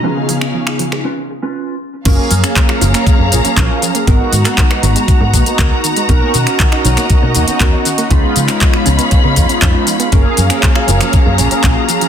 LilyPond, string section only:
\new Staff \with { instrumentName = "String section" } { \time 4/4 \key fis \major \tempo 4 = 119 << { cis'2 r2 | <cis'' ais''>1 | <fis' ais''>1~ | <fis' ais''>1 |
<cis'' b''>1 | <cis'' ais''>1 | } \\ { <cis eis''>2 r2 | <fis eis''>1 | gis1 | dis''1 |
<cis' eis''>1 | <fis eis''>1 | } >> }